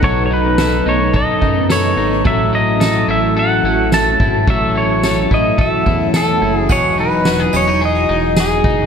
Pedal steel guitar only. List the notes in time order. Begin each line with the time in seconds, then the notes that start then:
0.04 C#5
0.26 C#5
0.34 B4
0.89 C#5
1.16 D#5
1.72 C#5
2.27 E5
2.55 D#5
3.11 E5
3.39 F#5
3.94 A5
4.50 E5
4.78 C#5
5.34 D#5
5.61 E5
6.16 A4
6.57 G#4
6.72 C#5
7.00 B4
7.56 C#5
7.85 D#5
8.40 G#4